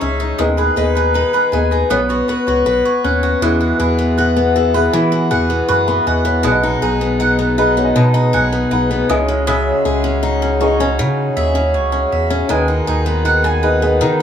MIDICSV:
0, 0, Header, 1, 6, 480
1, 0, Start_track
1, 0, Key_signature, 4, "major"
1, 0, Tempo, 756620
1, 249, Time_signature, 4, 2, 24, 8
1, 9022, End_track
2, 0, Start_track
2, 0, Title_t, "Mandolin"
2, 0, Program_c, 0, 25
2, 0, Note_on_c, 0, 56, 80
2, 0, Note_on_c, 0, 63, 59
2, 0, Note_on_c, 0, 73, 59
2, 5, Note_on_c, 0, 76, 61
2, 118, Note_off_c, 0, 63, 0
2, 126, Note_on_c, 0, 63, 52
2, 235, Note_off_c, 0, 56, 0
2, 243, Note_on_c, 0, 56, 82
2, 295, Note_off_c, 0, 63, 0
2, 295, Note_off_c, 0, 76, 0
2, 296, Note_off_c, 0, 73, 0
2, 363, Note_on_c, 0, 71, 56
2, 484, Note_on_c, 0, 63, 59
2, 602, Note_off_c, 0, 71, 0
2, 604, Note_on_c, 0, 71, 56
2, 717, Note_off_c, 0, 63, 0
2, 725, Note_on_c, 0, 63, 65
2, 843, Note_off_c, 0, 71, 0
2, 845, Note_on_c, 0, 71, 57
2, 964, Note_on_c, 0, 80, 64
2, 1078, Note_off_c, 0, 63, 0
2, 1086, Note_on_c, 0, 63, 56
2, 1203, Note_off_c, 0, 56, 0
2, 1206, Note_on_c, 0, 59, 82
2, 1255, Note_off_c, 0, 80, 0
2, 1256, Note_off_c, 0, 63, 0
2, 1323, Note_off_c, 0, 71, 0
2, 1326, Note_on_c, 0, 73, 52
2, 1447, Note_on_c, 0, 66, 62
2, 1559, Note_off_c, 0, 73, 0
2, 1566, Note_on_c, 0, 73, 59
2, 1684, Note_off_c, 0, 66, 0
2, 1687, Note_on_c, 0, 66, 63
2, 1802, Note_off_c, 0, 73, 0
2, 1810, Note_on_c, 0, 73, 61
2, 1931, Note_on_c, 0, 78, 63
2, 2047, Note_off_c, 0, 66, 0
2, 2050, Note_on_c, 0, 66, 56
2, 2170, Note_off_c, 0, 59, 0
2, 2172, Note_on_c, 0, 56, 85
2, 2173, Note_off_c, 0, 78, 0
2, 2175, Note_on_c, 0, 78, 75
2, 2218, Note_off_c, 0, 73, 0
2, 2409, Note_off_c, 0, 66, 0
2, 2411, Note_on_c, 0, 64, 59
2, 2649, Note_off_c, 0, 78, 0
2, 2649, Note_on_c, 0, 78, 72
2, 2888, Note_off_c, 0, 78, 0
2, 2891, Note_on_c, 0, 69, 62
2, 3009, Note_off_c, 0, 69, 0
2, 3009, Note_on_c, 0, 71, 53
2, 3123, Note_off_c, 0, 64, 0
2, 3130, Note_on_c, 0, 64, 74
2, 3368, Note_on_c, 0, 78, 68
2, 3601, Note_off_c, 0, 71, 0
2, 3609, Note_on_c, 0, 71, 70
2, 3847, Note_off_c, 0, 71, 0
2, 3850, Note_off_c, 0, 78, 0
2, 3850, Note_on_c, 0, 78, 71
2, 4085, Note_off_c, 0, 56, 0
2, 4088, Note_on_c, 0, 56, 85
2, 4092, Note_off_c, 0, 78, 0
2, 4092, Note_on_c, 0, 78, 76
2, 4139, Note_off_c, 0, 64, 0
2, 4331, Note_on_c, 0, 63, 64
2, 4563, Note_off_c, 0, 78, 0
2, 4571, Note_on_c, 0, 78, 78
2, 4811, Note_on_c, 0, 71, 69
2, 5047, Note_off_c, 0, 63, 0
2, 5050, Note_on_c, 0, 63, 77
2, 5283, Note_off_c, 0, 78, 0
2, 5291, Note_on_c, 0, 78, 73
2, 5521, Note_off_c, 0, 71, 0
2, 5529, Note_on_c, 0, 71, 67
2, 5767, Note_off_c, 0, 56, 0
2, 5769, Note_on_c, 0, 56, 84
2, 5818, Note_off_c, 0, 71, 0
2, 5819, Note_off_c, 0, 78, 0
2, 6007, Note_off_c, 0, 56, 0
2, 6009, Note_on_c, 0, 56, 92
2, 6014, Note_on_c, 0, 76, 76
2, 6033, Note_off_c, 0, 63, 0
2, 6493, Note_off_c, 0, 76, 0
2, 6732, Note_on_c, 0, 73, 65
2, 7210, Note_on_c, 0, 76, 72
2, 7441, Note_off_c, 0, 73, 0
2, 7449, Note_on_c, 0, 73, 70
2, 7683, Note_off_c, 0, 76, 0
2, 7691, Note_on_c, 0, 76, 70
2, 7929, Note_off_c, 0, 56, 0
2, 7931, Note_off_c, 0, 76, 0
2, 7931, Note_on_c, 0, 56, 89
2, 7935, Note_on_c, 0, 80, 71
2, 7978, Note_off_c, 0, 73, 0
2, 8170, Note_on_c, 0, 63, 61
2, 8407, Note_off_c, 0, 80, 0
2, 8409, Note_on_c, 0, 78, 75
2, 8529, Note_off_c, 0, 78, 0
2, 8529, Note_on_c, 0, 80, 57
2, 8649, Note_on_c, 0, 71, 64
2, 8882, Note_off_c, 0, 63, 0
2, 8890, Note_on_c, 0, 63, 76
2, 9022, Note_off_c, 0, 56, 0
2, 9022, Note_off_c, 0, 63, 0
2, 9022, Note_off_c, 0, 71, 0
2, 9022, Note_off_c, 0, 80, 0
2, 9022, End_track
3, 0, Start_track
3, 0, Title_t, "Felt piano"
3, 0, Program_c, 1, 0
3, 0, Control_c, 1, 64, 127
3, 0, Note_on_c, 1, 61, 82
3, 0, Note_on_c, 1, 64, 71
3, 0, Note_on_c, 1, 68, 72
3, 0, Note_on_c, 1, 75, 85
3, 243, Note_on_c, 1, 59, 81
3, 247, Note_on_c, 1, 63, 77
3, 253, Note_off_c, 1, 68, 0
3, 253, Note_on_c, 1, 68, 74
3, 256, Note_off_c, 1, 75, 0
3, 256, Note_on_c, 1, 75, 90
3, 257, Control_c, 1, 64, 0
3, 258, Note_off_c, 1, 61, 0
3, 261, Note_off_c, 1, 64, 0
3, 349, Control_c, 1, 64, 127
3, 470, Note_off_c, 1, 59, 0
3, 473, Note_off_c, 1, 63, 0
3, 478, Note_off_c, 1, 68, 0
3, 479, Note_on_c, 1, 59, 85
3, 480, Note_off_c, 1, 75, 0
3, 482, Note_on_c, 1, 63, 80
3, 488, Note_on_c, 1, 68, 77
3, 493, Note_on_c, 1, 75, 92
3, 939, Note_off_c, 1, 59, 0
3, 941, Note_off_c, 1, 63, 0
3, 944, Note_off_c, 1, 68, 0
3, 946, Note_off_c, 1, 75, 0
3, 964, Note_on_c, 1, 59, 83
3, 967, Note_on_c, 1, 63, 71
3, 973, Note_on_c, 1, 68, 71
3, 977, Note_on_c, 1, 75, 86
3, 1195, Note_off_c, 1, 59, 0
3, 1205, Note_on_c, 1, 59, 84
3, 1208, Note_on_c, 1, 61, 79
3, 1209, Note_off_c, 1, 63, 0
3, 1210, Note_on_c, 1, 66, 81
3, 1211, Note_off_c, 1, 68, 0
3, 1213, Note_off_c, 1, 75, 0
3, 1216, Note_on_c, 1, 73, 99
3, 1219, Control_c, 1, 64, 0
3, 1319, Control_c, 1, 64, 127
3, 2117, Note_off_c, 1, 59, 0
3, 2119, Note_off_c, 1, 61, 0
3, 2120, Note_off_c, 1, 66, 0
3, 2123, Note_off_c, 1, 73, 0
3, 2166, Note_on_c, 1, 59, 86
3, 2168, Note_on_c, 1, 64, 83
3, 2172, Note_on_c, 1, 66, 81
3, 2175, Note_on_c, 1, 68, 82
3, 2178, Note_on_c, 1, 76, 96
3, 2179, Control_c, 1, 64, 0
3, 2276, Control_c, 1, 64, 127
3, 2850, Note_off_c, 1, 59, 0
3, 2852, Note_off_c, 1, 64, 0
3, 2854, Note_off_c, 1, 66, 0
3, 2855, Note_off_c, 1, 68, 0
3, 2857, Note_off_c, 1, 76, 0
3, 2885, Note_on_c, 1, 59, 85
3, 2889, Note_on_c, 1, 64, 75
3, 2892, Note_on_c, 1, 66, 78
3, 2895, Note_on_c, 1, 68, 81
3, 2896, Note_on_c, 1, 76, 93
3, 2995, Note_off_c, 1, 59, 0
3, 2998, Note_off_c, 1, 64, 0
3, 3003, Note_off_c, 1, 66, 0
3, 3005, Note_on_c, 1, 59, 90
3, 3006, Note_off_c, 1, 68, 0
3, 3007, Note_off_c, 1, 76, 0
3, 3008, Note_on_c, 1, 64, 76
3, 3012, Note_on_c, 1, 66, 79
3, 3016, Note_on_c, 1, 68, 80
3, 3017, Note_on_c, 1, 76, 93
3, 3607, Note_on_c, 1, 85, 62
3, 3612, Note_on_c, 1, 80, 58
3, 3614, Note_off_c, 1, 76, 0
3, 3723, Note_off_c, 1, 85, 0
3, 3726, Note_off_c, 1, 80, 0
3, 3729, Note_on_c, 1, 83, 76
3, 3733, Note_on_c, 1, 78, 64
3, 3844, Note_off_c, 1, 83, 0
3, 3845, Note_on_c, 1, 80, 77
3, 3846, Note_off_c, 1, 78, 0
3, 3851, Note_on_c, 1, 75, 65
3, 3917, Note_off_c, 1, 59, 0
3, 3919, Note_off_c, 1, 64, 0
3, 3921, Note_off_c, 1, 66, 0
3, 3923, Note_off_c, 1, 68, 0
3, 3962, Note_off_c, 1, 80, 0
3, 3965, Note_off_c, 1, 75, 0
3, 3965, Note_on_c, 1, 78, 66
3, 3971, Note_on_c, 1, 73, 52
3, 4078, Note_on_c, 1, 59, 96
3, 4081, Note_on_c, 1, 63, 86
3, 4085, Note_on_c, 1, 66, 84
3, 4090, Note_on_c, 1, 68, 86
3, 4093, Note_on_c, 1, 74, 78
3, 4098, Control_c, 1, 64, 0
3, 4133, Note_off_c, 1, 74, 0
3, 4133, Note_on_c, 1, 75, 105
3, 4196, Note_off_c, 1, 78, 0
3, 4199, Note_off_c, 1, 73, 0
3, 4204, Control_c, 1, 64, 127
3, 4767, Note_off_c, 1, 59, 0
3, 4768, Note_off_c, 1, 63, 0
3, 4770, Note_off_c, 1, 66, 0
3, 4772, Note_off_c, 1, 68, 0
3, 4794, Note_off_c, 1, 75, 0
3, 4800, Note_on_c, 1, 59, 88
3, 4804, Note_on_c, 1, 63, 76
3, 4808, Note_on_c, 1, 66, 75
3, 4812, Note_on_c, 1, 68, 77
3, 4814, Note_on_c, 1, 75, 94
3, 4915, Note_off_c, 1, 59, 0
3, 4916, Note_off_c, 1, 63, 0
3, 4919, Note_off_c, 1, 66, 0
3, 4923, Note_off_c, 1, 68, 0
3, 4925, Note_on_c, 1, 59, 88
3, 4926, Note_on_c, 1, 63, 83
3, 4927, Note_off_c, 1, 75, 0
3, 4929, Note_on_c, 1, 66, 82
3, 4933, Note_on_c, 1, 68, 83
3, 4936, Note_on_c, 1, 73, 75
3, 4975, Note_off_c, 1, 73, 0
3, 4978, Note_on_c, 1, 75, 103
3, 5289, Note_on_c, 1, 80, 75
3, 5514, Note_off_c, 1, 80, 0
3, 5535, Note_on_c, 1, 78, 81
3, 5756, Note_off_c, 1, 78, 0
3, 5766, Note_on_c, 1, 61, 96
3, 5767, Note_off_c, 1, 68, 0
3, 5768, Note_off_c, 1, 59, 0
3, 5768, Note_off_c, 1, 63, 0
3, 5768, Note_off_c, 1, 75, 0
3, 5770, Note_off_c, 1, 66, 0
3, 5773, Note_on_c, 1, 64, 90
3, 5774, Note_on_c, 1, 76, 78
3, 5776, Note_on_c, 1, 68, 87
3, 5778, Note_on_c, 1, 75, 111
3, 5780, Control_c, 1, 64, 0
3, 5879, Control_c, 1, 64, 127
3, 5996, Note_off_c, 1, 76, 0
3, 6678, Note_off_c, 1, 61, 0
3, 6681, Note_off_c, 1, 64, 0
3, 6683, Note_off_c, 1, 68, 0
3, 6684, Note_off_c, 1, 75, 0
3, 6726, Note_on_c, 1, 61, 88
3, 6729, Note_on_c, 1, 63, 81
3, 6732, Note_on_c, 1, 64, 81
3, 6735, Note_on_c, 1, 68, 84
3, 6739, Note_on_c, 1, 75, 98
3, 6840, Note_off_c, 1, 61, 0
3, 6844, Note_off_c, 1, 63, 0
3, 6845, Note_off_c, 1, 64, 0
3, 6847, Note_off_c, 1, 68, 0
3, 6849, Note_off_c, 1, 75, 0
3, 6849, Note_on_c, 1, 61, 87
3, 6855, Note_on_c, 1, 64, 78
3, 6858, Note_on_c, 1, 68, 83
3, 6861, Note_on_c, 1, 75, 93
3, 7759, Note_off_c, 1, 61, 0
3, 7762, Note_off_c, 1, 64, 0
3, 7764, Note_off_c, 1, 68, 0
3, 7765, Note_off_c, 1, 75, 0
3, 7922, Note_on_c, 1, 68, 95
3, 7928, Note_on_c, 1, 71, 83
3, 7935, Note_on_c, 1, 75, 94
3, 7939, Control_c, 1, 64, 0
3, 8060, Control_c, 1, 64, 127
3, 8608, Note_off_c, 1, 68, 0
3, 8611, Note_off_c, 1, 71, 0
3, 8614, Note_off_c, 1, 75, 0
3, 8640, Note_on_c, 1, 68, 88
3, 8648, Note_on_c, 1, 71, 76
3, 8655, Note_on_c, 1, 75, 92
3, 8753, Note_off_c, 1, 68, 0
3, 8760, Note_off_c, 1, 71, 0
3, 8763, Note_on_c, 1, 68, 86
3, 8766, Note_off_c, 1, 75, 0
3, 8769, Note_on_c, 1, 71, 79
3, 8776, Note_on_c, 1, 75, 91
3, 9022, Note_off_c, 1, 68, 0
3, 9022, Note_off_c, 1, 71, 0
3, 9022, Note_off_c, 1, 75, 0
3, 9022, End_track
4, 0, Start_track
4, 0, Title_t, "Harmonium"
4, 0, Program_c, 2, 20
4, 2168, Note_on_c, 2, 59, 74
4, 2169, Note_on_c, 2, 52, 79
4, 2170, Note_on_c, 2, 68, 86
4, 2172, Note_on_c, 2, 66, 72
4, 4071, Note_off_c, 2, 52, 0
4, 4072, Note_off_c, 2, 68, 0
4, 4073, Note_off_c, 2, 66, 0
4, 4087, Note_on_c, 2, 66, 88
4, 4090, Note_on_c, 2, 56, 77
4, 5745, Note_off_c, 2, 59, 0
4, 5754, Note_off_c, 2, 56, 0
4, 5771, Note_on_c, 2, 68, 90
4, 5772, Note_on_c, 2, 49, 76
4, 5773, Note_on_c, 2, 61, 74
4, 7909, Note_off_c, 2, 68, 0
4, 7910, Note_off_c, 2, 49, 0
4, 7910, Note_off_c, 2, 61, 0
4, 7936, Note_on_c, 2, 68, 75
4, 7937, Note_on_c, 2, 51, 83
4, 7937, Note_on_c, 2, 71, 90
4, 9022, Note_off_c, 2, 51, 0
4, 9022, Note_off_c, 2, 66, 0
4, 9022, Note_off_c, 2, 68, 0
4, 9022, Note_off_c, 2, 71, 0
4, 9022, End_track
5, 0, Start_track
5, 0, Title_t, "Steel-string acoustic guitar"
5, 0, Program_c, 3, 25
5, 0, Note_on_c, 3, 49, 81
5, 0, Note_on_c, 3, 63, 56
5, 0, Note_on_c, 3, 68, 69
5, 9, Note_on_c, 3, 61, 56
5, 119, Note_off_c, 3, 63, 0
5, 126, Note_on_c, 3, 63, 56
5, 246, Note_on_c, 3, 51, 75
5, 292, Note_off_c, 3, 49, 0
5, 294, Note_off_c, 3, 68, 0
5, 296, Note_off_c, 3, 63, 0
5, 297, Note_off_c, 3, 61, 0
5, 368, Note_on_c, 3, 68, 56
5, 489, Note_on_c, 3, 71, 68
5, 605, Note_off_c, 3, 68, 0
5, 613, Note_on_c, 3, 68, 58
5, 729, Note_off_c, 3, 71, 0
5, 731, Note_on_c, 3, 71, 66
5, 843, Note_off_c, 3, 68, 0
5, 851, Note_on_c, 3, 68, 57
5, 972, Note_on_c, 3, 59, 58
5, 1084, Note_off_c, 3, 68, 0
5, 1091, Note_on_c, 3, 68, 55
5, 1209, Note_off_c, 3, 59, 0
5, 1209, Note_on_c, 3, 59, 81
5, 1257, Note_off_c, 3, 51, 0
5, 1259, Note_off_c, 3, 68, 0
5, 1332, Note_on_c, 3, 66, 59
5, 1450, Note_off_c, 3, 71, 0
5, 1453, Note_on_c, 3, 71, 64
5, 1570, Note_off_c, 3, 66, 0
5, 1572, Note_on_c, 3, 66, 56
5, 1685, Note_off_c, 3, 71, 0
5, 1688, Note_on_c, 3, 71, 70
5, 1808, Note_off_c, 3, 66, 0
5, 1811, Note_on_c, 3, 66, 53
5, 1931, Note_on_c, 3, 61, 57
5, 2046, Note_off_c, 3, 66, 0
5, 2049, Note_on_c, 3, 66, 57
5, 2171, Note_on_c, 3, 52, 83
5, 2219, Note_off_c, 3, 61, 0
5, 2285, Note_off_c, 3, 66, 0
5, 2287, Note_on_c, 3, 66, 60
5, 2406, Note_off_c, 3, 71, 0
5, 2408, Note_on_c, 3, 68, 75
5, 2529, Note_off_c, 3, 59, 0
5, 2529, Note_on_c, 3, 59, 60
5, 2652, Note_off_c, 3, 66, 0
5, 2654, Note_on_c, 3, 66, 65
5, 2766, Note_off_c, 3, 59, 0
5, 2769, Note_on_c, 3, 59, 60
5, 2889, Note_off_c, 3, 66, 0
5, 2891, Note_on_c, 3, 66, 67
5, 3006, Note_off_c, 3, 59, 0
5, 3009, Note_on_c, 3, 59, 61
5, 3123, Note_off_c, 3, 52, 0
5, 3130, Note_on_c, 3, 52, 93
5, 3245, Note_off_c, 3, 66, 0
5, 3247, Note_on_c, 3, 66, 65
5, 3365, Note_off_c, 3, 68, 0
5, 3367, Note_on_c, 3, 68, 69
5, 3486, Note_off_c, 3, 59, 0
5, 3488, Note_on_c, 3, 59, 63
5, 3604, Note_off_c, 3, 66, 0
5, 3606, Note_on_c, 3, 66, 69
5, 3726, Note_off_c, 3, 59, 0
5, 3729, Note_on_c, 3, 59, 62
5, 3847, Note_off_c, 3, 66, 0
5, 3849, Note_on_c, 3, 66, 57
5, 3961, Note_off_c, 3, 59, 0
5, 3964, Note_on_c, 3, 59, 61
5, 4081, Note_on_c, 3, 47, 86
5, 4139, Note_off_c, 3, 52, 0
5, 4206, Note_off_c, 3, 66, 0
5, 4209, Note_on_c, 3, 63, 67
5, 4325, Note_off_c, 3, 68, 0
5, 4328, Note_on_c, 3, 68, 74
5, 4445, Note_off_c, 3, 59, 0
5, 4448, Note_on_c, 3, 59, 64
5, 4564, Note_off_c, 3, 63, 0
5, 4566, Note_on_c, 3, 63, 68
5, 4679, Note_off_c, 3, 59, 0
5, 4686, Note_on_c, 3, 59, 58
5, 4806, Note_off_c, 3, 63, 0
5, 4809, Note_on_c, 3, 63, 67
5, 4922, Note_off_c, 3, 59, 0
5, 4930, Note_on_c, 3, 59, 61
5, 5040, Note_off_c, 3, 47, 0
5, 5048, Note_on_c, 3, 47, 94
5, 5162, Note_off_c, 3, 63, 0
5, 5164, Note_on_c, 3, 63, 67
5, 5282, Note_off_c, 3, 68, 0
5, 5285, Note_on_c, 3, 68, 70
5, 5401, Note_off_c, 3, 59, 0
5, 5408, Note_on_c, 3, 59, 65
5, 5524, Note_off_c, 3, 63, 0
5, 5526, Note_on_c, 3, 63, 67
5, 5643, Note_off_c, 3, 59, 0
5, 5650, Note_on_c, 3, 59, 62
5, 5768, Note_off_c, 3, 47, 0
5, 5770, Note_on_c, 3, 49, 78
5, 5819, Note_off_c, 3, 59, 0
5, 5890, Note_on_c, 3, 61, 62
5, 5909, Note_off_c, 3, 63, 0
5, 6001, Note_off_c, 3, 49, 0
5, 6009, Note_on_c, 3, 49, 88
5, 6248, Note_off_c, 3, 68, 0
5, 6250, Note_on_c, 3, 68, 72
5, 6361, Note_off_c, 3, 61, 0
5, 6369, Note_on_c, 3, 61, 65
5, 6488, Note_on_c, 3, 63, 71
5, 6604, Note_off_c, 3, 61, 0
5, 6611, Note_on_c, 3, 61, 61
5, 6726, Note_off_c, 3, 63, 0
5, 6728, Note_on_c, 3, 63, 67
5, 6846, Note_off_c, 3, 61, 0
5, 6854, Note_on_c, 3, 61, 67
5, 6965, Note_off_c, 3, 49, 0
5, 6972, Note_on_c, 3, 49, 91
5, 7209, Note_off_c, 3, 68, 0
5, 7211, Note_on_c, 3, 68, 70
5, 7319, Note_off_c, 3, 61, 0
5, 7327, Note_on_c, 3, 61, 64
5, 7346, Note_off_c, 3, 63, 0
5, 7556, Note_off_c, 3, 61, 0
5, 7564, Note_on_c, 3, 61, 58
5, 7798, Note_off_c, 3, 61, 0
5, 7806, Note_on_c, 3, 61, 61
5, 7924, Note_on_c, 3, 51, 84
5, 7976, Note_off_c, 3, 61, 0
5, 7980, Note_off_c, 3, 49, 0
5, 8045, Note_on_c, 3, 63, 63
5, 8164, Note_off_c, 3, 68, 0
5, 8167, Note_on_c, 3, 68, 73
5, 8285, Note_on_c, 3, 59, 63
5, 8398, Note_off_c, 3, 63, 0
5, 8406, Note_on_c, 3, 63, 68
5, 8524, Note_off_c, 3, 59, 0
5, 8527, Note_on_c, 3, 59, 57
5, 8638, Note_off_c, 3, 63, 0
5, 8646, Note_on_c, 3, 63, 61
5, 8766, Note_off_c, 3, 59, 0
5, 8769, Note_on_c, 3, 59, 61
5, 8879, Note_off_c, 3, 51, 0
5, 8887, Note_on_c, 3, 51, 89
5, 9002, Note_off_c, 3, 63, 0
5, 9022, Note_off_c, 3, 51, 0
5, 9022, Note_off_c, 3, 59, 0
5, 9022, Note_off_c, 3, 68, 0
5, 9022, End_track
6, 0, Start_track
6, 0, Title_t, "Analog synth bass"
6, 0, Program_c, 4, 38
6, 12, Note_on_c, 4, 37, 89
6, 208, Note_off_c, 4, 37, 0
6, 250, Note_on_c, 4, 39, 100
6, 447, Note_off_c, 4, 39, 0
6, 490, Note_on_c, 4, 39, 96
6, 785, Note_off_c, 4, 39, 0
6, 969, Note_on_c, 4, 39, 105
6, 1166, Note_off_c, 4, 39, 0
6, 1209, Note_on_c, 4, 35, 104
6, 1406, Note_off_c, 4, 35, 0
6, 1450, Note_on_c, 4, 37, 45
6, 1498, Note_off_c, 4, 37, 0
6, 1570, Note_on_c, 4, 37, 88
6, 1669, Note_off_c, 4, 37, 0
6, 1691, Note_on_c, 4, 35, 89
6, 1789, Note_off_c, 4, 35, 0
6, 1931, Note_on_c, 4, 39, 80
6, 2128, Note_off_c, 4, 39, 0
6, 2168, Note_on_c, 4, 40, 107
6, 2366, Note_off_c, 4, 40, 0
6, 2410, Note_on_c, 4, 40, 103
6, 3105, Note_off_c, 4, 40, 0
6, 3131, Note_on_c, 4, 52, 108
6, 3370, Note_on_c, 4, 40, 88
6, 3380, Note_off_c, 4, 52, 0
6, 3568, Note_off_c, 4, 40, 0
6, 3613, Note_on_c, 4, 42, 88
6, 3809, Note_off_c, 4, 42, 0
6, 3852, Note_on_c, 4, 40, 88
6, 4088, Note_on_c, 4, 35, 113
6, 4098, Note_off_c, 4, 40, 0
6, 4286, Note_off_c, 4, 35, 0
6, 4329, Note_on_c, 4, 35, 106
6, 5025, Note_off_c, 4, 35, 0
6, 5049, Note_on_c, 4, 47, 116
6, 5289, Note_on_c, 4, 35, 94
6, 5299, Note_off_c, 4, 47, 0
6, 5487, Note_off_c, 4, 35, 0
6, 5530, Note_on_c, 4, 35, 86
6, 5728, Note_off_c, 4, 35, 0
6, 5769, Note_on_c, 4, 37, 100
6, 6164, Note_off_c, 4, 37, 0
6, 6253, Note_on_c, 4, 37, 105
6, 6974, Note_on_c, 4, 49, 117
6, 6984, Note_off_c, 4, 37, 0
6, 7170, Note_off_c, 4, 49, 0
6, 7214, Note_on_c, 4, 39, 93
6, 7452, Note_on_c, 4, 37, 90
6, 7461, Note_off_c, 4, 39, 0
6, 7648, Note_off_c, 4, 37, 0
6, 7692, Note_on_c, 4, 40, 82
6, 7889, Note_off_c, 4, 40, 0
6, 7933, Note_on_c, 4, 39, 107
6, 8129, Note_off_c, 4, 39, 0
6, 8172, Note_on_c, 4, 39, 95
6, 8890, Note_on_c, 4, 51, 112
6, 8900, Note_off_c, 4, 39, 0
6, 9022, Note_off_c, 4, 51, 0
6, 9022, End_track
0, 0, End_of_file